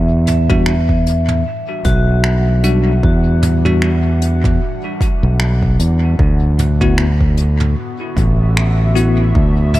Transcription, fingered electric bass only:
Already playing: E2
1.85 B1
3.03 E2
5.23 B1
5.80 E2
6.19 D2
8.17 A1
9.35 D2

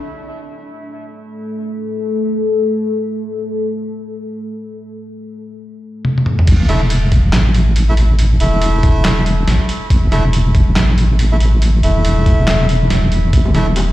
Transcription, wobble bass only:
6.48 A1
6.69 E1
7.33 A1
7.97 A1
8.40 E1
9.05 E1
9.47 A1
9.90 A1
10.12 E1
10.76 A1
11.40 A1
11.83 E1
12.48 E1
12.90 E1
13.33 A1
13.55 E1

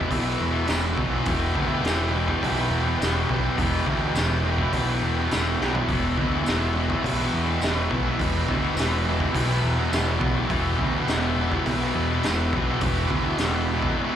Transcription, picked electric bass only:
0.11 B1
0.41 E2
0.70 E1
0.98 B1
1.26 E1
1.55 D2
1.83 E1
2.43 B1
2.71 E2
2.98 E1
3.29 B1
3.58 E1
3.87 D2
4.14 E1
4.73 B1
5.02 E2
5.31 E1
5.59 B1
5.89 E1
6.18 D2
6.45 E1
7.04 B1
7.33 E2
7.63 E1
7.91 B1
8.20 E1
8.49 D2
8.75 E1
9.35 B1
9.63 E2
9.92 E1
10.21 B1
10.51 E1
10.79 D2
11.08 E1
11.66 B1
11.95 E2
12.25 E1
12.53 B1
12.82 E1
13.10 D2
13.38 E1

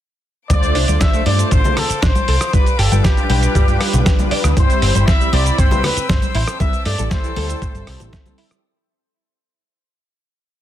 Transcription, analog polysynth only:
0.49 A3 D4 F4 C5
0.88 A3 D4 F4 C5
1.26 A3 D4 F4 C5
1.64 A3 D4 F4 C5
2.53 G3 D4 F4 D5
2.91 G3 D4 F4 B4
3.29 G3 D4 F4 B4
4.56 G3 C4 E4 C5
4.94 G3 C4 E4 B5
5.32 G3 C4 E4 B5
5.71 G3 C4 E4 B4
6.59 G3 C4 E4 B4
6.98 G3 C4 E4 A4
7.35 G3 C4 E4 A4

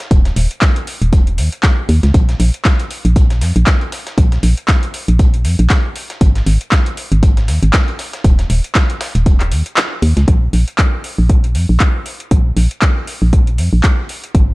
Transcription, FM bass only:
0.11 D#1
0.36 D#1
1.02 D#1
1.38 D#2
1.89 D#2
2.03 C#2
2.14 A#1
2.40 A#1
3.05 A#1
3.41 F2
3.56 A#1
4.18 A#1
4.43 A#1
5.08 A#1
5.45 F2
5.59 A#1
6.21 G#1
6.46 G#1
7.12 G#1
7.48 D#2
7.63 G#1
8.24 D#1
8.50 D#1
9.15 D#1
9.52 D#2
10.02 D#2
10.17 C#2
10.28 A#1
10.53 A#1
11.18 A#1
11.55 F2
11.69 A#1
12.31 A#1
12.57 A#1
13.22 A#1
13.58 F2
13.73 A#1
14.35 G#1

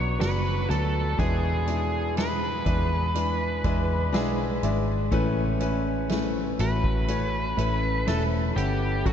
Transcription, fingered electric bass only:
Already playing: B1
0.21 F#1
0.70 D2
1.19 E2
2.66 E2
3.65 E2
4.14 B1
4.63 G#1
5.12 A1
6.59 A1
7.58 A1
8.07 E1
8.56 G1
9.06 A1

